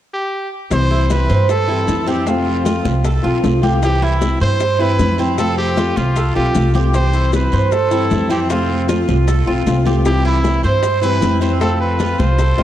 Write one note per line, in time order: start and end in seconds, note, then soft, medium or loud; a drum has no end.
0.14 0.49 G4 medium
0.70 1.25 C2 medium
0.70 1.09 C3 medium
0.70 1.08 E3 medium
0.70 1.09 G3 medium
0.70 1.10 C4 medium
0.70 1.10 E4 medium
0.70 1.13 C5 loud
0.70 high bongo medium
0.70 high conga soft
0.70 long guiro medium
0.70 maracas medium
0.91 1.28 E4 medium
0.91 high bongo soft
0.91 high conga soft
1.09 1.47 E3 soft
1.09 1.48 G3 medium
1.09 1.48 C4 soft
1.09 1.48 E4 soft
1.09 1.50 B4 medium
1.09 high bongo soft
1.09 high conga medium
1.09 short guiro medium
1.09 maracas medium
1.29 1.84 G2 medium
1.29 1.67 C5 medium
1.29 high conga soft
1.29 short guiro medium
1.29 maracas soft
1.48 2.04 A4 loud
1.48 muted nylon-string guitar stroke soft
1.48 high bongo medium
1.48 high conga soft
1.48 long guiro medium
1.48 maracas medium
1.67 1.86 E3 medium
1.67 1.86 G3 medium
1.67 1.87 C4 medium
1.67 1.87 E4 medium
1.67 2.06 E4 medium
1.67 high bongo soft
1.67 high conga soft
1.87 2.79 F2 medium
1.87 2.06 E3 medium
1.87 2.06 G3 soft
1.87 2.06 C4 soft
1.87 2.05 E4 soft
1.87 high bongo soft
1.87 low bongo medium
1.87 high conga medium
1.87 short guiro medium
1.87 maracas medium
2.06 2.26 E3 medium
2.06 2.26 G3 medium
2.06 2.26 C4 medium
2.06 2.25 C4 medium
2.06 2.25 E4 medium
2.06 2.30 G4 medium
2.06 high bongo soft
2.06 high conga soft
2.06 short guiro medium
2.06 maracas soft
2.26 2.64 C3 medium
2.26 2.63 F3 medium
2.26 2.64 A3 medium
2.26 2.64 C4 medium
2.26 2.65 C4 medium
2.26 2.66 F4 medium
2.26 2.67 F4 medium
2.26 high bongo medium
2.26 high conga soft
2.26 long guiro medium
2.26 maracas medium
2.46 high bongo soft
2.46 high conga soft
2.65 3.02 F3 soft
2.65 3.03 A3 soft
2.65 3.03 C4 soft
2.65 3.03 F4 medium
2.65 3.04 F4 medium
2.65 high bongo medium
2.65 high conga medium
2.65 short guiro medium
2.65 maracas medium
2.85 3.21 C2 medium
2.85 high conga loud
2.85 short guiro medium
2.85 maracas soft
3.04 3.24 A4 medium
3.04 muted nylon-string guitar stroke medium
3.04 high bongo medium
3.04 high conga soft
3.04 long guiro medium
3.04 maracas medium
3.23 3.42 B1 medium
3.23 3.41 F3 medium
3.23 3.42 A3 medium
3.23 3.42 C4 medium
3.23 3.42 F4 medium
3.23 3.62 F4 medium
3.23 high bongo soft
3.23 high conga soft
3.42 4.35 C2 medium
3.42 3.62 F3 soft
3.42 3.62 A3 medium
3.42 3.61 C4 medium
3.42 3.61 F4 medium
3.42 high bongo soft
3.42 low bongo medium
3.42 high conga medium
3.42 short guiro medium
3.42 maracas medium
3.62 3.81 F3 medium
3.62 3.82 A3 medium
3.62 3.81 C4 medium
3.62 3.81 F4 medium
3.62 4.01 G4 medium
3.62 high bongo soft
3.62 high conga medium
3.62 short guiro medium
3.62 maracas soft
3.81 4.20 C3 medium
3.81 4.19 E3 medium
3.81 4.20 G3 medium
3.81 4.21 C4 medium
3.81 4.21 E4 medium
3.81 4.05 G4 medium
3.81 high bongo medium
3.81 high conga soft
3.81 long guiro medium
3.81 maracas medium
4.02 4.40 E4 medium
4.02 4.41 E4 medium
4.02 high bongo soft
4.02 high conga soft
4.20 4.59 E3 soft
4.20 4.59 G3 soft
4.20 4.59 C4 medium
4.20 4.59 E4 medium
4.20 high bongo medium
4.20 high conga medium
4.20 short guiro medium
4.20 maracas medium
4.40 4.95 G2 medium
4.40 4.82 C5 loud
4.40 4.79 C5 medium
4.40 high conga soft
4.40 short guiro medium
4.40 maracas soft
4.59 muted nylon-string guitar stroke soft
4.59 high bongo medium
4.59 high conga soft
4.59 long guiro medium
4.59 maracas medium
4.79 4.98 E3 medium
4.79 4.98 G3 medium
4.79 4.98 C4 medium
4.79 4.98 E4 medium
4.79 5.18 E4 medium
4.79 5.19 B4 loud
4.79 high bongo soft
4.79 high conga soft
4.99 5.90 F2 medium
4.99 5.18 E3 soft
4.99 5.18 G3 medium
4.99 5.18 C4 medium
4.99 5.17 E4 medium
4.99 high bongo soft
4.99 low bongo medium
4.99 high conga medium
4.99 short guiro medium
4.99 maracas medium
5.18 5.38 E3 medium
5.18 5.38 G3 medium
5.18 5.38 C4 medium
5.18 5.37 C4 medium
5.18 5.37 E4 medium
5.18 high bongo soft
5.18 high conga soft
5.18 short guiro medium
5.18 maracas soft
5.37 5.76 C3 medium
5.37 5.75 F3 medium
5.37 5.76 A3 medium
5.37 5.76 C4 medium
5.37 5.77 C4 medium
5.37 5.77 F4 medium
5.37 5.56 A4 loud
5.37 high bongo medium
5.37 high conga soft
5.37 long guiro medium
5.37 maracas medium
5.57 5.98 G4 loud
5.57 high bongo soft
5.57 high conga soft
5.76 6.15 F3 soft
5.76 6.15 A3 medium
5.76 6.16 C4 soft
5.76 6.15 F4 medium
5.76 6.16 F4 soft
5.76 high bongo medium
5.76 high conga medium
5.76 short guiro medium
5.76 maracas medium
5.96 6.33 C2 medium
5.96 6.35 F4 medium
5.96 high conga medium
5.96 short guiro medium
5.96 maracas soft
6.16 6.35 A4 medium
6.16 muted nylon-string guitar stroke medium
6.16 high bongo medium
6.16 high conga soft
6.16 long guiro medium
6.16 maracas medium
6.35 6.54 B1 medium
6.35 6.54 F3 medium
6.35 6.54 A3 medium
6.35 6.54 C4 medium
6.35 6.54 F4 medium
6.35 6.73 F4 medium
6.35 6.72 G4 medium
6.35 high bongo soft
6.35 high conga soft
6.54 7.46 C2 medium
6.54 6.74 F3 soft
6.54 6.74 A3 soft
6.54 6.74 C4 soft
6.54 high bongo soft
6.54 low bongo medium
6.54 high conga medium
6.54 short guiro medium
6.54 maracas medium
6.74 6.94 F3 medium
6.74 6.94 A3 soft
6.74 6.93 C4 medium
6.74 6.93 F4 medium
6.74 7.13 G4 medium
6.74 high bongo soft
6.74 high conga medium
6.74 short guiro medium
6.74 maracas soft
6.93 7.32 C3 medium
6.93 7.31 E3 medium
6.93 7.32 G3 medium
6.93 7.33 C4 medium
6.93 7.33 E4 medium
6.93 7.31 C5 loud
6.93 high bongo medium
6.93 high conga soft
6.93 long guiro medium
6.93 maracas medium
7.13 7.51 E4 medium
7.13 high bongo soft
7.13 high conga soft
7.13 maracas medium
7.32 7.71 E3 soft
7.32 7.71 G3 soft
7.32 7.71 C4 medium
7.32 7.71 E4 soft
7.32 7.74 B4 medium
7.32 high bongo medium
7.32 high conga medium
7.32 short guiro medium
7.32 maracas medium
7.52 8.07 G2 medium
7.52 7.90 C5 medium
7.52 high conga soft
7.52 short guiro medium
7.52 maracas soft
7.71 8.30 A4 medium
7.71 muted nylon-string guitar stroke medium
7.71 high bongo medium
7.71 high conga soft
7.71 long guiro medium
7.71 maracas medium
7.91 8.09 E3 medium
7.91 8.10 G3 medium
7.91 8.10 C4 medium
7.91 8.10 E4 medium
7.91 8.29 E4 medium
7.91 high bongo soft
7.91 high conga soft
7.91 maracas medium
8.10 9.02 F2 medium
8.10 8.29 E3 medium
8.10 8.30 G3 soft
8.10 8.29 C4 medium
8.10 8.28 E4 medium
8.10 high bongo soft
8.10 low bongo medium
8.10 high conga medium
8.10 short guiro medium
8.10 maracas medium
8.29 8.49 E3 medium
8.29 8.49 G3 medium
8.29 8.49 C4 medium
8.29 8.48 E4 medium
8.29 8.40 G4 medium
8.29 high bongo soft
8.29 high conga soft
8.29 short guiro medium
8.29 maracas soft
8.49 8.88 C3 medium
8.49 8.87 F3 medium
8.49 8.88 A3 medium
8.49 8.88 C4 medium
8.49 8.87 F4 medium
8.49 8.89 F4 medium
8.49 high bongo medium
8.49 high conga soft
8.49 long guiro medium
8.49 maracas medium
8.69 high bongo soft
8.69 high conga soft
8.88 9.26 F3 soft
8.88 9.27 A3 soft
8.88 9.27 C4 medium
8.88 9.26 F4 medium
8.88 9.27 F4 medium
8.88 high bongo medium
8.88 high conga medium
8.88 short guiro medium
8.88 maracas medium
9.08 9.45 C2 loud
9.08 high conga medium
9.08 short guiro medium
9.08 maracas soft
9.27 9.46 A4 medium
9.27 muted nylon-string guitar stroke medium
9.27 high bongo medium
9.27 high conga soft
9.27 long guiro medium
9.27 maracas medium
9.46 9.65 B1 medium
9.46 9.65 F3 medium
9.46 9.66 A3 medium
9.46 9.66 C4 medium
9.46 9.65 F4 medium
9.46 9.85 F4 medium
9.46 high bongo soft
9.46 high conga soft
9.66 10.58 C2 medium
9.66 9.85 F3 medium
9.66 9.85 A3 soft
9.66 9.85 C4 medium
9.66 9.84 F4 medium
9.66 high bongo soft
9.66 low bongo medium
9.66 high conga medium
9.66 short guiro medium
9.66 maracas medium
9.85 10.04 F3 medium
9.85 10.05 A3 medium
9.85 10.05 C4 medium
9.85 10.04 F4 medium
9.85 10.24 G4 medium
9.85 high bongo soft
9.85 high conga medium
9.85 short guiro medium
9.85 maracas soft
10.04 10.43 C3 medium
10.04 10.42 E3 medium
10.04 10.43 G3 medium
10.04 10.44 C4 medium
10.04 10.44 E4 medium
10.04 10.24 G4 loud
10.04 high bongo medium
10.04 high conga soft
10.04 long guiro medium
10.04 maracas medium
10.25 10.63 E4 medium
10.25 10.62 E4 loud
10.25 high bongo soft
10.25 high conga soft
10.43 10.82 E3 soft
10.43 10.82 G3 soft
10.43 10.82 C4 medium
10.43 10.83 E4 soft
10.43 high bongo medium
10.43 high conga medium
10.43 short guiro medium
10.43 maracas medium
10.63 11.19 G2 medium
10.63 11.00 C5 loud
10.63 11.02 C5 medium
10.63 high conga soft
10.63 short guiro medium
10.63 maracas soft
10.82 muted nylon-string guitar stroke medium
10.82 high bongo medium
10.82 high conga soft
10.82 long guiro medium
10.82 maracas medium
11.02 11.20 E3 medium
11.02 11.21 G3 medium
11.02 11.21 C4 medium
11.02 11.21 E4 medium
11.02 11.41 E4 medium
11.02 11.39 B4 loud
11.02 high bongo soft
11.02 high conga soft
11.02 maracas medium
11.21 12.14 F2 medium
11.21 11.40 E3 medium
11.21 11.41 G3 soft
11.21 11.40 C4 medium
11.21 11.39 E4 medium
11.21 high bongo soft
11.21 low bongo medium
11.21 high conga medium
11.21 short guiro medium
11.21 maracas medium
11.41 11.60 E3 medium
11.41 11.60 G3 medium
11.41 11.60 C4 medium
11.41 11.60 E4 medium
11.41 high bongo soft
11.41 high conga soft
11.41 short guiro medium
11.41 maracas soft
11.59 11.99 C3 medium
11.59 11.97 F3 medium
11.59 11.98 A3 medium
11.59 11.99 C4 medium
11.59 12.00 F4 medium
11.59 11.79 A4 loud
11.59 high bongo medium
11.59 high conga soft
11.59 long guiro medium
11.59 maracas medium
11.81 12.20 B4 medium
11.81 high bongo soft
11.81 high conga soft
11.98 12.37 F3 medium
11.98 12.37 A3 soft
11.98 12.38 C4 medium
11.98 12.38 F4 medium
11.98 high bongo medium
11.98 high conga medium
11.98 short guiro medium
11.98 maracas medium
12.18 12.56 C2 medium
12.18 12.63 C5 medium
12.18 high conga loud
12.18 short guiro medium
12.18 maracas soft
12.38 12.58 A4 medium
12.38 muted nylon-string guitar stroke medium
12.38 high bongo medium
12.38 high conga soft
12.38 long guiro medium
12.38 maracas medium
12.57 12.63 B1 medium
12.57 12.63 F3 medium
12.57 12.63 A3 medium
12.57 12.63 C4 medium
12.57 12.63 F4 medium
12.57 high bongo medium
12.57 high conga soft